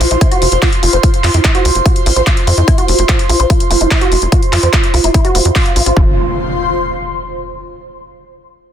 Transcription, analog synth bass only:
0.01 0.07 A#1 loud
0.11 0.17 A#1 medium
0.42 0.48 F1 medium
0.52 0.58 F1 medium
0.83 0.89 F1 medium
0.93 0.99 F1 medium
1.24 1.30 F2 medium
1.34 1.40 F2 medium
1.65 1.71 C2 loud
1.75 1.81 F1 medium
2.06 2.12 A1 loud
2.16 2.22 A1 medium
2.47 2.53 F2 medium
2.58 2.63 F2 medium
2.88 2.94 F1 medium
2.99 3.04 F1 medium
3.29 3.35 A#1 medium
3.40 3.46 A#1 medium
3.71 3.76 F1 medium
3.81 3.87 F1 medium
4.12 4.17 F1 medium
4.22 4.28 F1 medium
4.53 4.59 F2 loud
4.63 4.69 F2 medium
4.94 5.00 C2 medium
5.04 5.10 F1 medium
5.35 5.41 F1 medium
5.45 5.51 F2 medium
5.76 5.82 A1 medium
5.86 5.92 A1 medium
5.97 6.16 F1 loud

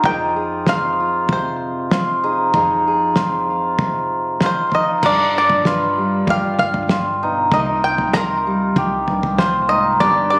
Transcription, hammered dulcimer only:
0.00 0.67 F4 medium
0.00 1.93 G4 medium
0.05 2.23 D#4 medium
0.68 1.92 F4 medium
1.92 3.16 F4 medium
2.24 2.54 D#4 medium
2.54 4.73 D#4 medium
3.17 4.42 F4 medium
4.43 5.66 F4 medium
4.74 5.11 D#4 medium
5.05 7.29 D4 medium
5.66 6.90 F4 medium
6.29 8.77 G4 medium
6.91 8.16 F4 medium
7.23 7.54 D#4 medium
7.54 9.70 D#4 medium
8.16 9.39 F4 medium
8.77 10.39 G4 medium
9.39 10.39 F4 medium
9.71 10.07 D#4 medium
10.01 10.39 D4 medium

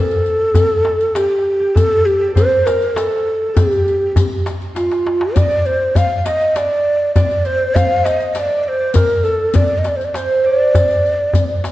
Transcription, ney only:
0.00 1.17 A4 loud
1.16 1.77 G4 medium
1.76 2.07 A4 loud
2.05 2.34 G4 medium
2.35 2.67 C5 loud
2.66 2.97 A#4 medium
2.96 3.56 A4 medium
3.55 4.48 G4 medium
4.76 5.38 F4 medium
5.36 5.67 D5 medium
5.66 5.98 C5 loud
5.96 6.18 F5 loud
6.18 6.27 F5 medium
6.26 6.58 D#5 medium
6.56 7.14 D5 medium
7.15 7.48 D5 loud
7.46 7.77 C5 loud
7.75 8.06 F5 loud
8.05 8.34 D#5 medium
8.34 8.40 D#5 medium
8.39 8.64 D5 medium
8.64 8.69 D5 medium
8.68 8.96 C5 loud
8.94 9.25 A#4 loud
9.24 9.57 A4 medium
9.55 9.80 D5 medium
9.78 9.90 D#5 medium
9.88 9.98 D5 medium
9.96 10.06 C5 medium
10.05 10.17 D5 medium
10.15 10.46 C5 medium
10.45 11.72 D5 loud

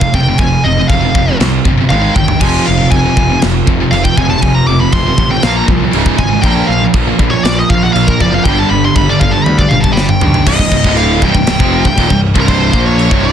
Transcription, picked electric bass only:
0.14 0.31 F1 medium
0.39 0.57 F1 medium
0.65 0.82 F1 medium
0.90 1.07 F1 medium
1.15 1.33 F1 medium
1.40 1.58 C2 medium
1.65 1.83 G1 medium
1.91 2.08 G#1 medium
2.16 2.33 G1 medium
2.41 2.58 F1 medium
2.68 2.85 F1 medium
2.91 3.09 F1 medium
3.17 3.34 F1 medium
3.43 3.60 F1 medium
3.67 3.85 F1 medium
3.92 4.09 F1 medium
4.17 4.35 F1 medium
4.42 4.60 F1 loud
4.68 4.86 F1 medium
4.92 5.10 F1 medium
5.18 5.35 A1 medium
5.43 5.61 A#1 medium
5.68 5.86 C2 medium
5.94 6.11 C#1 medium
6.18 6.36 G#1 loud
6.43 6.61 A#1 loud
6.69 6.86 A#1 medium
6.94 7.12 A#1 medium
7.19 7.37 A#1 medium
7.44 7.62 A#1 medium
7.70 7.88 A#1 loud
7.95 8.13 A#1 medium
8.21 8.38 F#1 medium
8.45 8.63 G1 medium
8.71 8.88 G1 medium
8.96 9.13 G1 medium
9.21 9.39 G1 medium
9.46 9.64 D2 medium
9.72 9.89 G1 medium
9.96 10.14 G1 loud
10.21 10.39 B1 medium
10.47 10.58 C1 loud
10.59 10.71 C1 medium
10.72 10.84 C1 medium
10.85 11.20 D1 medium
11.22 11.34 C1 medium
11.35 11.46 C1 medium
11.47 11.59 C1 medium
11.60 11.83 F1 medium
11.85 11.97 C1 medium
11.98 12.10 D#1 medium
12.10 12.34 C1 medium
12.36 12.71 C1 medium
12.74 13.09 A#1 medium
13.11 13.32 C1 loud

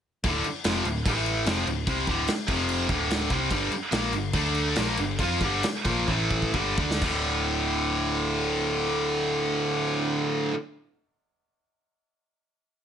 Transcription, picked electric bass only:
0.23 0.43 D1 medium
0.44 muted picked electric bass stroke soft
0.65 0.84 F1 medium
0.84 1.04 D1 medium
1.06 1.44 A1 loud
1.46 1.65 F1 medium
1.66 1.86 D1 medium
1.87 2.06 C2 loud
2.07 2.27 D1 medium
2.48 2.87 F1 medium
2.89 3.28 D1 loud
3.31 3.50 C2 medium
3.50 3.70 G1 medium
3.71 muted picked electric bass stroke soft
3.92 4.12 A#1 medium
4.13 4.33 G1 medium
4.34 4.73 D2 medium
4.77 4.97 A#1 medium
4.98 5.18 G1 medium
5.19 5.39 F2 loud
5.40 5.61 G1 medium
5.85 6.06 A#1 loud
6.08 6.51 A1 medium
6.54 6.76 G1 medium
6.78 7.00 D2 medium
7.02 10.36 D1 medium

